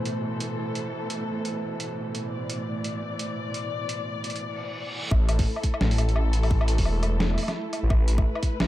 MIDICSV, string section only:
0, 0, Header, 1, 2, 480
1, 0, Start_track
1, 0, Key_signature, 0, "minor"
1, 0, Tempo, 348837
1, 1276, Time_signature, 4, 2, 24, 8
1, 11933, End_track
2, 0, Start_track
2, 0, Title_t, "String section"
2, 0, Program_c, 0, 48
2, 0, Note_on_c, 0, 45, 76
2, 0, Note_on_c, 0, 47, 71
2, 0, Note_on_c, 0, 52, 69
2, 0, Note_on_c, 0, 69, 86
2, 3184, Note_off_c, 0, 69, 0
2, 3194, Note_on_c, 0, 74, 87
2, 6979, Note_off_c, 0, 45, 0
2, 6979, Note_off_c, 0, 52, 0
2, 6980, Note_off_c, 0, 47, 0
2, 7024, Note_off_c, 0, 74, 0
2, 7043, Note_on_c, 0, 69, 92
2, 7044, Note_on_c, 0, 64, 76
2, 7045, Note_on_c, 0, 57, 81
2, 10869, Note_off_c, 0, 69, 0
2, 10875, Note_on_c, 0, 71, 99
2, 11933, Note_off_c, 0, 57, 0
2, 11933, Note_off_c, 0, 64, 0
2, 11933, Note_off_c, 0, 71, 0
2, 11933, End_track
0, 0, End_of_file